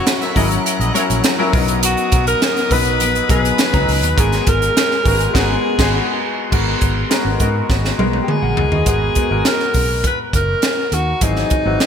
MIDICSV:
0, 0, Header, 1, 7, 480
1, 0, Start_track
1, 0, Key_signature, 5, "minor"
1, 0, Tempo, 587084
1, 1490, Time_signature, 4, 2, 24, 8
1, 9698, End_track
2, 0, Start_track
2, 0, Title_t, "String section"
2, 0, Program_c, 0, 48
2, 0, Note_on_c, 0, 73, 73
2, 0, Note_on_c, 0, 78, 70
2, 0, Note_on_c, 0, 82, 70
2, 0, Note_on_c, 0, 90, 86
2, 1222, Note_off_c, 0, 73, 0
2, 1240, Note_off_c, 0, 90, 0
2, 1254, Note_on_c, 0, 87, 90
2, 1259, Note_on_c, 0, 59, 81
2, 3389, Note_off_c, 0, 87, 0
2, 3391, Note_off_c, 0, 59, 0
2, 3411, Note_on_c, 0, 80, 87
2, 3414, Note_on_c, 0, 68, 79
2, 5300, Note_off_c, 0, 78, 0
2, 5301, Note_off_c, 0, 82, 0
2, 5310, Note_off_c, 0, 80, 0
2, 5312, Note_off_c, 0, 68, 0
2, 9698, End_track
3, 0, Start_track
3, 0, Title_t, "Horn section"
3, 0, Program_c, 1, 61
3, 173, Note_on_c, 1, 76, 89
3, 174, Note_on_c, 1, 70, 75
3, 174, Note_on_c, 1, 73, 76
3, 268, Note_off_c, 1, 76, 0
3, 269, Note_off_c, 1, 70, 0
3, 269, Note_off_c, 1, 73, 0
3, 295, Note_on_c, 1, 75, 89
3, 297, Note_on_c, 1, 68, 85
3, 299, Note_on_c, 1, 71, 82
3, 389, Note_off_c, 1, 75, 0
3, 391, Note_off_c, 1, 68, 0
3, 392, Note_off_c, 1, 71, 0
3, 652, Note_on_c, 1, 75, 81
3, 653, Note_on_c, 1, 68, 80
3, 654, Note_on_c, 1, 71, 71
3, 748, Note_off_c, 1, 68, 0
3, 748, Note_off_c, 1, 71, 0
3, 748, Note_off_c, 1, 75, 0
3, 769, Note_on_c, 1, 70, 80
3, 770, Note_on_c, 1, 66, 78
3, 773, Note_on_c, 1, 73, 88
3, 841, Note_off_c, 1, 70, 0
3, 842, Note_off_c, 1, 66, 0
3, 844, Note_off_c, 1, 73, 0
3, 9698, End_track
4, 0, Start_track
4, 0, Title_t, "Alto saxophone"
4, 0, Program_c, 2, 65
4, 0, Note_on_c, 2, 66, 86
4, 264, Note_off_c, 2, 66, 0
4, 1509, Note_on_c, 2, 66, 92
4, 1835, Note_off_c, 2, 66, 0
4, 1861, Note_on_c, 2, 70, 104
4, 2224, Note_on_c, 2, 71, 121
4, 2237, Note_off_c, 2, 70, 0
4, 2697, Note_off_c, 2, 71, 0
4, 2705, Note_on_c, 2, 71, 104
4, 3426, Note_on_c, 2, 68, 91
4, 3438, Note_off_c, 2, 71, 0
4, 3669, Note_on_c, 2, 70, 101
4, 3681, Note_off_c, 2, 68, 0
4, 4138, Note_off_c, 2, 70, 0
4, 4150, Note_on_c, 2, 70, 93
4, 4363, Note_off_c, 2, 70, 0
4, 4395, Note_on_c, 2, 68, 86
4, 5068, Note_off_c, 2, 68, 0
4, 6727, Note_on_c, 2, 67, 66
4, 6783, Note_on_c, 2, 68, 90
4, 6795, Note_off_c, 2, 67, 0
4, 7255, Note_off_c, 2, 68, 0
4, 7263, Note_on_c, 2, 68, 95
4, 7746, Note_on_c, 2, 70, 97
4, 7759, Note_off_c, 2, 68, 0
4, 8217, Note_off_c, 2, 70, 0
4, 8228, Note_on_c, 2, 71, 90
4, 8331, Note_off_c, 2, 71, 0
4, 8466, Note_on_c, 2, 70, 97
4, 8941, Note_on_c, 2, 66, 93
4, 8954, Note_off_c, 2, 70, 0
4, 9186, Note_on_c, 2, 63, 87
4, 9199, Note_off_c, 2, 66, 0
4, 9698, Note_off_c, 2, 63, 0
4, 9698, End_track
5, 0, Start_track
5, 0, Title_t, "Grand piano"
5, 0, Program_c, 3, 0
5, 0, Control_c, 3, 64, 127
5, 0, Note_on_c, 3, 54, 76
5, 0, Note_on_c, 3, 61, 68
5, 0, Note_on_c, 3, 64, 70
5, 0, Note_on_c, 3, 66, 80
5, 0, Note_on_c, 3, 70, 76
5, 130, Note_off_c, 3, 54, 0
5, 132, Note_off_c, 3, 61, 0
5, 132, Note_off_c, 3, 64, 0
5, 134, Note_off_c, 3, 70, 0
5, 292, Note_on_c, 3, 54, 85
5, 293, Note_on_c, 3, 61, 78
5, 296, Note_on_c, 3, 64, 76
5, 299, Note_on_c, 3, 70, 92
5, 662, Note_off_c, 3, 54, 0
5, 663, Note_off_c, 3, 61, 0
5, 664, Note_off_c, 3, 64, 0
5, 665, Note_off_c, 3, 70, 0
5, 771, Note_on_c, 3, 54, 87
5, 773, Note_on_c, 3, 61, 75
5, 777, Note_on_c, 3, 64, 76
5, 780, Note_on_c, 3, 70, 90
5, 1049, Note_off_c, 3, 54, 0
5, 1050, Note_off_c, 3, 61, 0
5, 1052, Note_off_c, 3, 64, 0
5, 1053, Note_off_c, 3, 70, 0
5, 1131, Note_on_c, 3, 54, 96
5, 1136, Note_on_c, 3, 61, 82
5, 1137, Note_on_c, 3, 64, 85
5, 1139, Note_on_c, 3, 70, 102
5, 1237, Note_off_c, 3, 54, 0
5, 1248, Note_off_c, 3, 70, 0
5, 1250, Note_on_c, 3, 54, 94
5, 1252, Note_on_c, 3, 59, 90
5, 1253, Note_off_c, 3, 61, 0
5, 1254, Note_off_c, 3, 64, 0
5, 1256, Note_on_c, 3, 63, 79
5, 1260, Control_c, 3, 64, 0
5, 1260, Note_on_c, 3, 70, 101
5, 1264, Note_off_c, 3, 66, 0
5, 1423, Control_c, 3, 64, 127
5, 2017, Note_off_c, 3, 54, 0
5, 2018, Note_off_c, 3, 59, 0
5, 2020, Note_off_c, 3, 63, 0
5, 2023, Note_off_c, 3, 70, 0
5, 2209, Note_on_c, 3, 54, 70
5, 2211, Note_on_c, 3, 59, 64
5, 2215, Note_on_c, 3, 63, 70
5, 2219, Note_on_c, 3, 71, 85
5, 2580, Note_off_c, 3, 54, 0
5, 2581, Note_off_c, 3, 59, 0
5, 2583, Note_off_c, 3, 63, 0
5, 2585, Note_off_c, 3, 71, 0
5, 2686, Note_on_c, 3, 54, 70
5, 2691, Note_on_c, 3, 59, 61
5, 2693, Note_on_c, 3, 63, 62
5, 2697, Note_on_c, 3, 68, 82
5, 2966, Note_off_c, 3, 54, 0
5, 2968, Note_off_c, 3, 59, 0
5, 2969, Note_off_c, 3, 63, 0
5, 2971, Note_off_c, 3, 68, 0
5, 3045, Note_on_c, 3, 54, 72
5, 3049, Note_on_c, 3, 59, 66
5, 3051, Note_on_c, 3, 63, 69
5, 3054, Note_on_c, 3, 82, 83
5, 3325, Note_off_c, 3, 54, 0
5, 3327, Note_off_c, 3, 59, 0
5, 3328, Note_off_c, 3, 63, 0
5, 3329, Note_off_c, 3, 82, 0
5, 3401, Note_on_c, 3, 56, 70
5, 3405, Note_on_c, 3, 59, 68
5, 3407, Note_on_c, 3, 66, 69
5, 3411, Note_on_c, 3, 70, 85
5, 3418, Control_c, 3, 64, 0
5, 3542, Control_c, 3, 64, 127
5, 3961, Note_off_c, 3, 56, 0
5, 3962, Note_off_c, 3, 59, 0
5, 3964, Note_off_c, 3, 66, 0
5, 3965, Note_off_c, 3, 70, 0
5, 4126, Note_on_c, 3, 56, 71
5, 4126, Note_on_c, 3, 59, 66
5, 4130, Note_on_c, 3, 66, 64
5, 4134, Note_on_c, 3, 70, 79
5, 4349, Note_off_c, 3, 56, 0
5, 4351, Note_off_c, 3, 59, 0
5, 4354, Note_off_c, 3, 66, 0
5, 4360, Note_off_c, 3, 70, 0
5, 4361, Note_on_c, 3, 56, 92
5, 4364, Note_on_c, 3, 59, 90
5, 4367, Note_on_c, 3, 66, 91
5, 4372, Note_on_c, 3, 70, 90
5, 4527, Note_off_c, 3, 56, 0
5, 4529, Note_off_c, 3, 59, 0
5, 4530, Note_off_c, 3, 66, 0
5, 4533, Note_off_c, 3, 70, 0
5, 4729, Note_on_c, 3, 56, 92
5, 4734, Note_on_c, 3, 59, 85
5, 4737, Note_on_c, 3, 66, 94
5, 4739, Note_on_c, 3, 68, 88
5, 4892, Note_off_c, 3, 56, 0
5, 4895, Note_off_c, 3, 59, 0
5, 4896, Note_off_c, 3, 66, 0
5, 4898, Note_off_c, 3, 68, 0
5, 5321, Note_on_c, 3, 56, 78
5, 5328, Note_on_c, 3, 59, 73
5, 5331, Note_on_c, 3, 66, 70
5, 5335, Note_on_c, 3, 70, 86
5, 5339, Control_c, 3, 64, 0
5, 5499, Control_c, 3, 64, 127
5, 5695, Note_off_c, 3, 56, 0
5, 5699, Note_off_c, 3, 59, 0
5, 5700, Note_off_c, 3, 66, 0
5, 5702, Note_off_c, 3, 70, 0
5, 5802, Note_on_c, 3, 56, 81
5, 5804, Note_on_c, 3, 59, 76
5, 5807, Note_on_c, 3, 66, 81
5, 5812, Note_on_c, 3, 70, 92
5, 5990, Note_off_c, 3, 56, 0
5, 5991, Note_off_c, 3, 59, 0
5, 5993, Note_off_c, 3, 66, 0
5, 5995, Note_off_c, 3, 70, 0
5, 6046, Note_on_c, 3, 56, 76
5, 6051, Note_on_c, 3, 59, 72
5, 6053, Note_on_c, 3, 66, 77
5, 6056, Note_on_c, 3, 70, 90
5, 6418, Note_off_c, 3, 56, 0
5, 6420, Note_off_c, 3, 59, 0
5, 6421, Note_off_c, 3, 66, 0
5, 6423, Note_off_c, 3, 70, 0
5, 6526, Note_on_c, 3, 56, 83
5, 6530, Note_on_c, 3, 59, 70
5, 6533, Note_on_c, 3, 66, 74
5, 6537, Note_on_c, 3, 70, 85
5, 6770, Note_off_c, 3, 66, 0
5, 6770, Note_on_c, 3, 80, 58
5, 6772, Note_off_c, 3, 70, 0
5, 6773, Note_on_c, 3, 71, 53
5, 6805, Note_off_c, 3, 56, 0
5, 6807, Note_off_c, 3, 59, 0
5, 6883, Note_off_c, 3, 80, 0
5, 6884, Note_off_c, 3, 71, 0
5, 6886, Note_on_c, 3, 78, 69
5, 6894, Note_on_c, 3, 70, 57
5, 7115, Note_off_c, 3, 78, 0
5, 7119, Note_off_c, 3, 70, 0
5, 7128, Note_on_c, 3, 75, 55
5, 7137, Note_on_c, 3, 66, 46
5, 7237, Note_off_c, 3, 66, 0
5, 7239, Note_on_c, 3, 56, 66
5, 7243, Note_on_c, 3, 59, 62
5, 7248, Note_on_c, 3, 70, 75
5, 7250, Note_on_c, 3, 66, 62
5, 7259, Control_c, 3, 64, 0
5, 7356, Note_off_c, 3, 75, 0
5, 7384, Control_c, 3, 64, 127
5, 7429, Note_off_c, 3, 56, 0
5, 7431, Note_off_c, 3, 59, 0
5, 7433, Note_off_c, 3, 70, 0
5, 7434, Note_off_c, 3, 66, 0
5, 7487, Note_on_c, 3, 56, 64
5, 7491, Note_on_c, 3, 59, 58
5, 7494, Note_on_c, 3, 66, 60
5, 7499, Note_on_c, 3, 70, 67
5, 7580, Note_off_c, 3, 56, 0
5, 7582, Note_off_c, 3, 59, 0
5, 7584, Note_off_c, 3, 66, 0
5, 7587, Note_off_c, 3, 70, 0
5, 7603, Note_on_c, 3, 56, 65
5, 7606, Note_on_c, 3, 59, 62
5, 7609, Note_on_c, 3, 66, 63
5, 7613, Note_on_c, 3, 70, 74
5, 8347, Note_off_c, 3, 56, 0
5, 8349, Note_off_c, 3, 59, 0
5, 8351, Note_off_c, 3, 66, 0
5, 8352, Note_off_c, 3, 70, 0
5, 9165, Note_on_c, 3, 54, 65
5, 9169, Note_on_c, 3, 60, 65
5, 9172, Note_on_c, 3, 52, 61
5, 9173, Note_on_c, 3, 68, 73
5, 9178, Control_c, 3, 64, 0
5, 9333, Control_c, 3, 64, 127
5, 9445, Note_off_c, 3, 54, 0
5, 9447, Note_off_c, 3, 60, 0
5, 9449, Note_off_c, 3, 52, 0
5, 9449, Note_off_c, 3, 68, 0
5, 9524, Note_on_c, 3, 54, 71
5, 9525, Note_on_c, 3, 60, 58
5, 9532, Note_on_c, 3, 52, 67
5, 9532, Note_on_c, 3, 66, 78
5, 9698, Note_off_c, 3, 52, 0
5, 9698, Note_off_c, 3, 54, 0
5, 9698, Note_off_c, 3, 60, 0
5, 9698, Note_off_c, 3, 66, 0
5, 9698, End_track
6, 0, Start_track
6, 0, Title_t, "Fingered electric bass"
6, 0, Program_c, 4, 33
6, 294, Note_on_c, 4, 32, 89
6, 462, Note_off_c, 4, 32, 0
6, 650, Note_on_c, 4, 34, 88
6, 735, Note_off_c, 4, 34, 0
6, 899, Note_on_c, 4, 34, 80
6, 980, Note_off_c, 4, 34, 0
6, 1255, Note_on_c, 4, 35, 93
6, 1591, Note_off_c, 4, 35, 0
6, 1739, Note_on_c, 4, 35, 102
6, 1904, Note_off_c, 4, 35, 0
6, 2213, Note_on_c, 4, 35, 84
6, 2450, Note_off_c, 4, 35, 0
6, 2450, Note_on_c, 4, 34, 87
6, 2618, Note_off_c, 4, 34, 0
6, 2696, Note_on_c, 4, 35, 85
6, 2862, Note_off_c, 4, 35, 0
6, 3055, Note_on_c, 4, 37, 79
6, 3137, Note_off_c, 4, 37, 0
6, 3174, Note_on_c, 4, 37, 89
6, 3295, Note_off_c, 4, 37, 0
6, 3295, Note_on_c, 4, 39, 89
6, 3377, Note_off_c, 4, 39, 0
6, 3413, Note_on_c, 4, 32, 104
6, 3580, Note_off_c, 4, 32, 0
6, 3655, Note_on_c, 4, 32, 96
6, 3821, Note_off_c, 4, 32, 0
6, 4134, Note_on_c, 4, 32, 93
6, 4301, Note_off_c, 4, 32, 0
6, 4374, Note_on_c, 4, 32, 99
6, 4535, Note_off_c, 4, 32, 0
6, 4730, Note_on_c, 4, 32, 98
6, 4892, Note_off_c, 4, 32, 0
6, 5332, Note_on_c, 4, 32, 104
6, 5499, Note_off_c, 4, 32, 0
6, 5575, Note_on_c, 4, 32, 91
6, 5741, Note_off_c, 4, 32, 0
6, 5925, Note_on_c, 4, 32, 84
6, 6010, Note_off_c, 4, 32, 0
6, 6053, Note_on_c, 4, 44, 89
6, 6220, Note_off_c, 4, 44, 0
6, 6291, Note_on_c, 4, 32, 87
6, 6459, Note_off_c, 4, 32, 0
6, 6529, Note_on_c, 4, 35, 85
6, 6698, Note_off_c, 4, 35, 0
6, 6887, Note_on_c, 4, 34, 78
6, 6972, Note_off_c, 4, 34, 0
6, 7013, Note_on_c, 4, 37, 76
6, 7095, Note_off_c, 4, 37, 0
6, 7128, Note_on_c, 4, 39, 85
6, 7212, Note_off_c, 4, 39, 0
6, 7248, Note_on_c, 4, 32, 97
6, 7417, Note_off_c, 4, 32, 0
6, 7609, Note_on_c, 4, 32, 92
6, 7693, Note_off_c, 4, 32, 0
6, 7968, Note_on_c, 4, 35, 81
6, 8221, Note_off_c, 4, 35, 0
6, 8448, Note_on_c, 4, 30, 80
6, 8617, Note_off_c, 4, 30, 0
6, 8926, Note_on_c, 4, 39, 83
6, 9096, Note_off_c, 4, 39, 0
6, 9168, Note_on_c, 4, 32, 89
6, 9337, Note_off_c, 4, 32, 0
6, 9529, Note_on_c, 4, 32, 94
6, 9613, Note_off_c, 4, 32, 0
6, 9698, End_track
7, 0, Start_track
7, 0, Title_t, "Drums"
7, 54, Note_on_c, 9, 42, 85
7, 56, Note_on_c, 9, 38, 120
7, 136, Note_off_c, 9, 42, 0
7, 137, Note_off_c, 9, 38, 0
7, 177, Note_on_c, 9, 38, 31
7, 178, Note_on_c, 9, 42, 35
7, 259, Note_off_c, 9, 38, 0
7, 260, Note_off_c, 9, 42, 0
7, 293, Note_on_c, 9, 46, 67
7, 294, Note_on_c, 9, 36, 74
7, 375, Note_off_c, 9, 46, 0
7, 376, Note_off_c, 9, 36, 0
7, 417, Note_on_c, 9, 42, 49
7, 499, Note_off_c, 9, 42, 0
7, 540, Note_on_c, 9, 42, 80
7, 622, Note_off_c, 9, 42, 0
7, 660, Note_on_c, 9, 42, 37
7, 742, Note_off_c, 9, 42, 0
7, 779, Note_on_c, 9, 42, 86
7, 860, Note_off_c, 9, 42, 0
7, 899, Note_on_c, 9, 42, 53
7, 981, Note_off_c, 9, 42, 0
7, 1011, Note_on_c, 9, 42, 92
7, 1017, Note_on_c, 9, 38, 125
7, 1093, Note_off_c, 9, 42, 0
7, 1099, Note_off_c, 9, 38, 0
7, 1254, Note_on_c, 9, 36, 113
7, 1254, Note_on_c, 9, 46, 73
7, 1336, Note_off_c, 9, 36, 0
7, 1336, Note_off_c, 9, 46, 0
7, 1375, Note_on_c, 9, 42, 77
7, 1457, Note_off_c, 9, 42, 0
7, 1494, Note_on_c, 9, 42, 119
7, 1576, Note_off_c, 9, 42, 0
7, 1612, Note_on_c, 9, 42, 34
7, 1694, Note_off_c, 9, 42, 0
7, 1732, Note_on_c, 9, 42, 78
7, 1737, Note_on_c, 9, 36, 92
7, 1814, Note_off_c, 9, 42, 0
7, 1818, Note_off_c, 9, 36, 0
7, 1856, Note_on_c, 9, 42, 51
7, 1938, Note_off_c, 9, 42, 0
7, 1978, Note_on_c, 9, 42, 80
7, 1979, Note_on_c, 9, 38, 118
7, 2060, Note_off_c, 9, 42, 0
7, 2061, Note_off_c, 9, 38, 0
7, 2099, Note_on_c, 9, 38, 32
7, 2100, Note_on_c, 9, 42, 35
7, 2181, Note_off_c, 9, 38, 0
7, 2182, Note_off_c, 9, 42, 0
7, 2213, Note_on_c, 9, 46, 67
7, 2214, Note_on_c, 9, 36, 81
7, 2295, Note_off_c, 9, 46, 0
7, 2296, Note_off_c, 9, 36, 0
7, 2332, Note_on_c, 9, 42, 50
7, 2414, Note_off_c, 9, 42, 0
7, 2454, Note_on_c, 9, 42, 79
7, 2535, Note_off_c, 9, 42, 0
7, 2577, Note_on_c, 9, 42, 34
7, 2659, Note_off_c, 9, 42, 0
7, 2693, Note_on_c, 9, 36, 86
7, 2694, Note_on_c, 9, 42, 83
7, 2775, Note_off_c, 9, 36, 0
7, 2776, Note_off_c, 9, 42, 0
7, 2821, Note_on_c, 9, 42, 54
7, 2903, Note_off_c, 9, 42, 0
7, 2930, Note_on_c, 9, 42, 86
7, 2936, Note_on_c, 9, 38, 127
7, 3012, Note_off_c, 9, 42, 0
7, 3018, Note_off_c, 9, 38, 0
7, 3055, Note_on_c, 9, 42, 38
7, 3056, Note_on_c, 9, 36, 105
7, 3137, Note_off_c, 9, 36, 0
7, 3137, Note_off_c, 9, 42, 0
7, 3177, Note_on_c, 9, 46, 81
7, 3259, Note_off_c, 9, 46, 0
7, 3298, Note_on_c, 9, 42, 75
7, 3380, Note_off_c, 9, 42, 0
7, 3415, Note_on_c, 9, 36, 106
7, 3418, Note_on_c, 9, 42, 114
7, 3496, Note_off_c, 9, 36, 0
7, 3499, Note_off_c, 9, 42, 0
7, 3535, Note_on_c, 9, 42, 35
7, 3537, Note_on_c, 9, 38, 33
7, 3617, Note_off_c, 9, 42, 0
7, 3619, Note_off_c, 9, 38, 0
7, 3652, Note_on_c, 9, 42, 74
7, 3655, Note_on_c, 9, 36, 93
7, 3734, Note_off_c, 9, 42, 0
7, 3737, Note_off_c, 9, 36, 0
7, 3778, Note_on_c, 9, 42, 47
7, 3859, Note_off_c, 9, 42, 0
7, 3899, Note_on_c, 9, 42, 82
7, 3900, Note_on_c, 9, 38, 106
7, 3980, Note_off_c, 9, 42, 0
7, 3982, Note_off_c, 9, 38, 0
7, 4016, Note_on_c, 9, 38, 31
7, 4097, Note_off_c, 9, 38, 0
7, 4132, Note_on_c, 9, 46, 69
7, 4133, Note_on_c, 9, 36, 81
7, 4214, Note_off_c, 9, 46, 0
7, 4215, Note_off_c, 9, 36, 0
7, 4255, Note_on_c, 9, 42, 50
7, 4337, Note_off_c, 9, 42, 0
7, 4373, Note_on_c, 9, 36, 98
7, 4377, Note_on_c, 9, 49, 79
7, 4378, Note_on_c, 9, 38, 99
7, 4455, Note_off_c, 9, 36, 0
7, 4458, Note_off_c, 9, 49, 0
7, 4460, Note_off_c, 9, 38, 0
7, 4732, Note_on_c, 9, 36, 106
7, 4735, Note_on_c, 9, 49, 81
7, 4736, Note_on_c, 9, 38, 100
7, 4814, Note_off_c, 9, 36, 0
7, 4816, Note_off_c, 9, 49, 0
7, 4818, Note_off_c, 9, 38, 0
7, 5333, Note_on_c, 9, 36, 105
7, 5334, Note_on_c, 9, 49, 91
7, 5414, Note_off_c, 9, 36, 0
7, 5415, Note_off_c, 9, 49, 0
7, 5569, Note_on_c, 9, 42, 64
7, 5574, Note_on_c, 9, 36, 85
7, 5651, Note_off_c, 9, 42, 0
7, 5656, Note_off_c, 9, 36, 0
7, 5812, Note_on_c, 9, 42, 83
7, 5813, Note_on_c, 9, 38, 104
7, 5893, Note_off_c, 9, 42, 0
7, 5894, Note_off_c, 9, 38, 0
7, 6048, Note_on_c, 9, 42, 59
7, 6051, Note_on_c, 9, 36, 74
7, 6129, Note_off_c, 9, 42, 0
7, 6133, Note_off_c, 9, 36, 0
7, 6292, Note_on_c, 9, 36, 89
7, 6294, Note_on_c, 9, 38, 51
7, 6374, Note_off_c, 9, 36, 0
7, 6376, Note_off_c, 9, 38, 0
7, 6416, Note_on_c, 9, 38, 50
7, 6498, Note_off_c, 9, 38, 0
7, 6534, Note_on_c, 9, 48, 70
7, 6616, Note_off_c, 9, 48, 0
7, 6650, Note_on_c, 9, 48, 61
7, 6732, Note_off_c, 9, 48, 0
7, 6772, Note_on_c, 9, 47, 77
7, 6854, Note_off_c, 9, 47, 0
7, 7008, Note_on_c, 9, 43, 93
7, 7090, Note_off_c, 9, 43, 0
7, 7128, Note_on_c, 9, 43, 86
7, 7210, Note_off_c, 9, 43, 0
7, 7245, Note_on_c, 9, 42, 102
7, 7248, Note_on_c, 9, 36, 102
7, 7326, Note_off_c, 9, 42, 0
7, 7330, Note_off_c, 9, 36, 0
7, 7484, Note_on_c, 9, 42, 68
7, 7490, Note_on_c, 9, 36, 85
7, 7566, Note_off_c, 9, 42, 0
7, 7572, Note_off_c, 9, 36, 0
7, 7726, Note_on_c, 9, 42, 75
7, 7727, Note_on_c, 9, 38, 112
7, 7808, Note_off_c, 9, 42, 0
7, 7809, Note_off_c, 9, 38, 0
7, 7846, Note_on_c, 9, 38, 30
7, 7928, Note_off_c, 9, 38, 0
7, 7963, Note_on_c, 9, 46, 62
7, 7968, Note_on_c, 9, 36, 68
7, 8045, Note_off_c, 9, 46, 0
7, 8049, Note_off_c, 9, 36, 0
7, 8208, Note_on_c, 9, 42, 70
7, 8209, Note_on_c, 9, 36, 80
7, 8290, Note_off_c, 9, 36, 0
7, 8290, Note_off_c, 9, 42, 0
7, 8449, Note_on_c, 9, 36, 80
7, 8452, Note_on_c, 9, 42, 79
7, 8531, Note_off_c, 9, 36, 0
7, 8534, Note_off_c, 9, 42, 0
7, 8684, Note_on_c, 9, 42, 82
7, 8690, Note_on_c, 9, 38, 107
7, 8766, Note_off_c, 9, 42, 0
7, 8772, Note_off_c, 9, 38, 0
7, 8928, Note_on_c, 9, 42, 74
7, 9010, Note_off_c, 9, 42, 0
7, 9167, Note_on_c, 9, 42, 96
7, 9169, Note_on_c, 9, 36, 99
7, 9249, Note_off_c, 9, 42, 0
7, 9251, Note_off_c, 9, 36, 0
7, 9288, Note_on_c, 9, 38, 31
7, 9369, Note_off_c, 9, 38, 0
7, 9404, Note_on_c, 9, 42, 71
7, 9411, Note_on_c, 9, 36, 90
7, 9485, Note_off_c, 9, 42, 0
7, 9493, Note_off_c, 9, 36, 0
7, 9650, Note_on_c, 9, 42, 71
7, 9651, Note_on_c, 9, 38, 108
7, 9698, Note_off_c, 9, 38, 0
7, 9698, Note_off_c, 9, 42, 0
7, 9698, End_track
0, 0, End_of_file